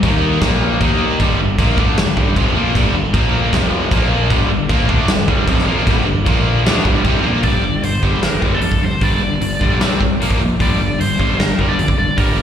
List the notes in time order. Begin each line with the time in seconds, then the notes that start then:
0.03 D#2 D#3 A#3 D#4, kick, crash
0.40 A#1 A#2 F3 A#3, kick, snare, crash
0.80 D#2 D#3 A#3 D#4, kick, crash
1.20 G1 G2 D3 G3, kick, crash
1.39 G1 G2 D3
1.58 A#1 A#2 F3 A#3, kick, crash
1.77 D2 D3 A3 D4, kick
1.97 G1 G2 D3, snare, crash
2.16 G1 G2 D3 G3, kick
2.36 F1 F2 C3 F3, kick, crash
2.55 A#1 A#2 F3 A#3
2.75 G1 G2 D3 G3, kick, crash
2.94 G1 G2 D3
3.13 A#1 A#2 F3 A#3, kick, crash
3.53 F1 F2 C3 F3, kick, snare, crash
3.91 A#1 A#2 F3 A#3, kick, crash
4.30 G1 G2 D3 G3, kick, crash
4.49 G1 G2 D3
4.69 A#1 A#2 F3 A#3, kick, crash
4.89 D2 D3 A3 D4, kick
5.08 G1 G2 D3, snare, crash
5.27 G1 G2 D3 G3, kick
5.47 F1 F2 C3 F3, kick, crash
5.59 snare
5.66 A#1 A#2 F3 A#3
5.85 G1 G2 D3 G3, kick, crash
6.06 G1 G2 D3
6.24 A#1 A#2 F3 A#3, kick, crash
6.64 D2 D3 A3 D4, snare, crash
6.85 G1 G2 D3 G3, kick
7.03 C2 C3 G3 C4, kick, crash
7.22 A#1 A#2 F3 A#3
7.43 G1 G2 D3 G3 D5, kick, open hi-hat
7.63 G1 G2 D3
7.82 G1 G2 D3 C5, open hi-hat
8.02 G1 G2 D3 G3, kick
8.22 G1 G2 D3 A#4, snare, open hi-hat
8.41 G1 G2 D3 G3, kick
8.55 A4
8.61 F2 G2 D3, open hi-hat
8.72 kick
8.81 F1 G2 D3 C5
9.01 G1 G2 D3 G3 D5, kick, open hi-hat
9.21 G1 G2 D3
9.41 G1 G2 D3, open hi-hat
9.60 A#1 G2 D3 G3, kick
9.79 C2 C3 G3 C4, snare, open hi-hat
10.00 C2 C3 G3, kick
10.20 A#1 A#2 F3 A#3, open hi-hat
10.30 kick
10.40 F1 A#2 F3
10.59 G1 G2 D3 G3 D5, kick, open hi-hat
10.80 G1 G2 D3
10.99 G1 G2 D3 C5, open hi-hat
11.17 G1 G2 D3 G3, kick
11.38 G1 G2 D3 A#4, snare, open hi-hat
11.58 G1 G2 D3 G3, kick
11.68 D5
11.77 F2 G2 D3, open hi-hat
11.88 kick
11.97 F1 G2 D3 D5
12.17 G1 G2 D3 G3 A#4, kick, open hi-hat
12.37 G1 G2 D3